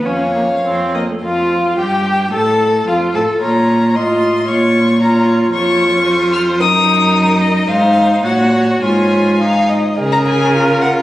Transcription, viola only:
\new Staff \with { instrumentName = "Viola" } { \time 2/4 \key f \phrygian \tempo 4 = 110 des'8 bes8 c'8 bes16 a16 | f'4 g'4 | a'4 f'8 a'8 | f'4 f'4 |
f'4 f'4 | \key des \major f'2 | ees'2 | ees'4 ges'4 |
f'4 ees'8 r8 | bes'2 | }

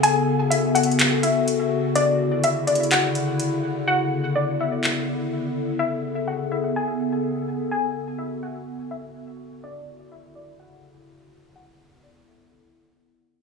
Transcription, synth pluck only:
\new Staff \with { instrumentName = "Synth pluck" } { \time 4/4 \key a \major \tempo 4 = 125 gis''4 e''8 fis''4 e''8 r4 | d''4 e''8 d''8 fis''2 | fis''4 d''8 e''4. r4 | e''4 fis''8 e''8 gis''2 |
gis''4 e''8 fis''4 e''8 r4 | d''4 e''8 d''8 fis''2 | fis''4 d''8 e''4. r4 | }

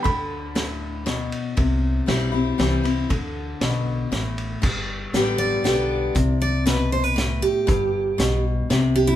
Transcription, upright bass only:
\new Staff \with { instrumentName = "Upright bass" } { \clef bass \time 3/4 \key g \major \tempo 4 = 118 d,2. | c,4 b,,4 c,4 | d,4 b,,4 a,,4 | g,,4 a,,4 b,,4 |
c,2. | g,,4 b,,4 c,4 | }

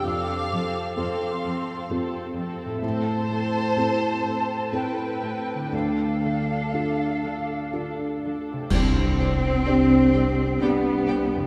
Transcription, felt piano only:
\new Staff \with { instrumentName = "Felt piano" } { \time 3/4 \key c \major \tempo 4 = 63 f,4 <c' f' a'>4 <c' f' a'>4 | a,4 <c' e' a'>4 <c' e' a'>4 | d,4 <d' f' a'>4 <d' f' a'>4 | c,4 <d' g' c''>4 <d' g' d''>4 | }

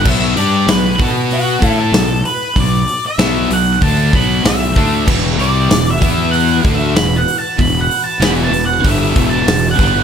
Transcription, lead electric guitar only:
\new Staff \with { instrumentName = "Lead electric guitar" } { \time 4/4 \key e \minor \tempo 4 = 96 e''8 d''8 b'8 a'8 fis'8. a'8. b'8 | d''8. e''8. fis''8 a''8 b''8 e''4 | r8 d''8~ \tuplet 3/2 { d''8 e''4 fis''8 fis''8 e''8 b''8 fis''8 a''8 } | \tuplet 3/2 { b''8 fis''8 a''8 b''8 a''8 fis''8 e''4 a''8~ a''8 fis''4 } | }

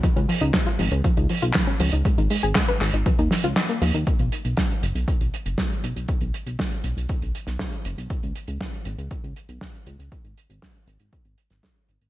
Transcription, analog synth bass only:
\new Staff \with { instrumentName = "Analog synth bass" } { \clef bass \time 4/4 \key b \lydian \tempo 4 = 119 r16 cis,16 r16 cis,16 r8 gis,,16 cis,16 r16 cis,16 r16 b,,16 r8 cis,16 cis,16 | r16 gis,,16 r16 gis,,16 r8 gis,,16 gis,,16 r16 dis,16 r16 cis,16 r8 dis,16 dis,16 | r16 b,,16 r16 b,,16 r8 fis,,16 b,,16 r16 b,,16 r16 fis,,16 r8 b,,16 b,,16 | r16 b,,16 r16 b,,16 r8 b,,16 b,,16 r16 b,,16 r16 b,,16 r8 fis,,16 b,,16 |
r16 cis,16 r16 cis,16 r8 gis,,16 cis,16 r16 cis,16 r16 b,,16 r8 cis,16 cis,16 | r16 gis,,16 r16 gis,,16 r8 gis,,16 gis,,16 r16 gis,,16 r16 gis,,16 r8 gis,,16 gis,,16 | }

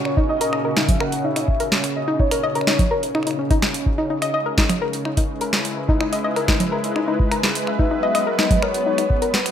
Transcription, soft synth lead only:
\new Staff \with { instrumentName = "Soft synth lead" } { \time 4/4 \key ees \phrygian \tempo 4 = 126 des''8 ees''4 fes''8 ges''8 fes''4 r8 | ees''8 des''2. r8 | r1 | r1 |
fes''4. ees''8 des''4. ces''8 | }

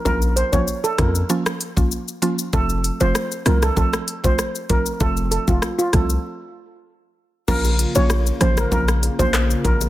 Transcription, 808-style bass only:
\new Staff \with { instrumentName = "808-style bass" } { \clef bass \time 4/4 \key bes \minor \tempo 4 = 97 bes,,8. bes,,16 r8 f,8 r2 | f,,8. f,,16 r8 c,8 r2 | f,,8. f,,16 r8 c,8 r2 | bes,,8. bes,,8. a,,8 bes,,8. bes,,8. a,,8 | }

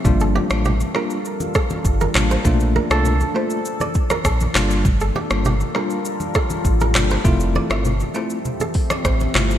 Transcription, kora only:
\new Staff \with { instrumentName = "Kora" } { \time 4/4 \key g \dorian \tempo 4 = 100 r16 a'16 g'16 r16 g'16 r16 bes'16 r8. a'16 r8 bes'16 r16 c''16 | r8 bes'16 a'16 r8 c''16 r8 d''16 r16 bes'16 a'8 r8 | r16 a'16 g'16 r16 g'16 r16 bes'16 r8. a'16 r8 bes'16 r16 c''16 | r8 d''16 e''16 r8 c''16 r8 a'16 r16 d''16 c''8 r8 | }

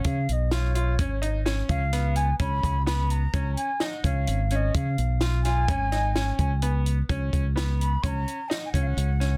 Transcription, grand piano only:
\new Staff \with { instrumentName = "Grand piano" } { \time 5/4 \key des \mixolydian \tempo 4 = 128 des'8 r8 f'8 f'8 des'8 ees'8 des'4 ces'4 | des'4 ces'4 des'4 ees'8 des'4 des'8~ | des'8 r8 f'8 f'8 des'8 ees'8 des'4 ces'4 | des'4 ces'4 des'4 ees'8 des'4 des'8 | }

